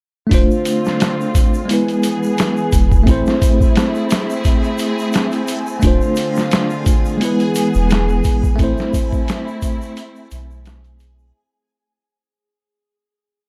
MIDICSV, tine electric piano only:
0, 0, Header, 1, 2, 480
1, 0, Start_track
1, 0, Key_signature, 0, "minor"
1, 0, Tempo, 689655
1, 219, Time_signature, 4, 2, 24, 8
1, 9388, End_track
2, 0, Start_track
2, 0, Title_t, "Tine electric piano"
2, 0, Program_c, 0, 4
2, 186, Note_on_c, 0, 57, 76
2, 205, Note_on_c, 0, 62, 72
2, 223, Note_on_c, 0, 65, 71
2, 240, Note_on_c, 0, 72, 81
2, 331, Control_c, 0, 64, 127
2, 1119, Note_off_c, 0, 57, 0
2, 1128, Note_off_c, 0, 62, 0
2, 1137, Note_off_c, 0, 65, 0
2, 1146, Note_off_c, 0, 72, 0
2, 1151, Note_on_c, 0, 56, 71
2, 1170, Note_on_c, 0, 59, 65
2, 1187, Control_c, 0, 64, 0
2, 1188, Note_on_c, 0, 64, 67
2, 1208, Note_on_c, 0, 71, 74
2, 1301, Control_c, 0, 64, 127
2, 2082, Note_off_c, 0, 56, 0
2, 2091, Note_off_c, 0, 59, 0
2, 2100, Note_off_c, 0, 64, 0
2, 2110, Note_off_c, 0, 71, 0
2, 2112, Note_on_c, 0, 57, 89
2, 2131, Note_on_c, 0, 60, 85
2, 2148, Control_c, 0, 64, 0
2, 2149, Note_on_c, 0, 64, 83
2, 2165, Note_on_c, 0, 72, 103
2, 2257, Control_c, 0, 64, 127
2, 4002, Note_off_c, 0, 57, 0
2, 4011, Note_off_c, 0, 60, 0
2, 4021, Note_off_c, 0, 64, 0
2, 4029, Note_off_c, 0, 72, 0
2, 4034, Note_on_c, 0, 57, 78
2, 4051, Note_on_c, 0, 62, 77
2, 4068, Note_on_c, 0, 65, 73
2, 4069, Control_c, 0, 64, 0
2, 4087, Note_on_c, 0, 72, 86
2, 4180, Control_c, 0, 64, 127
2, 4963, Note_off_c, 0, 57, 0
2, 4971, Note_off_c, 0, 62, 0
2, 4980, Note_off_c, 0, 65, 0
2, 4989, Note_off_c, 0, 72, 0
2, 4994, Note_on_c, 0, 56, 74
2, 5013, Note_on_c, 0, 59, 72
2, 5027, Control_c, 0, 64, 0
2, 5028, Note_on_c, 0, 64, 66
2, 5045, Note_on_c, 0, 71, 76
2, 5162, Control_c, 0, 64, 127
2, 5923, Note_off_c, 0, 56, 0
2, 5932, Note_off_c, 0, 59, 0
2, 5940, Note_off_c, 0, 64, 0
2, 5948, Note_off_c, 0, 71, 0
2, 5955, Note_on_c, 0, 57, 100
2, 5974, Note_on_c, 0, 60, 84
2, 5987, Control_c, 0, 64, 0
2, 5992, Note_on_c, 0, 64, 83
2, 6011, Note_on_c, 0, 72, 104
2, 6123, Control_c, 0, 64, 127
2, 7844, Note_off_c, 0, 57, 0
2, 7853, Note_off_c, 0, 60, 0
2, 7862, Note_off_c, 0, 64, 0
2, 7871, Note_off_c, 0, 72, 0
2, 7908, Control_c, 0, 64, 0
2, 9388, End_track
0, 0, End_of_file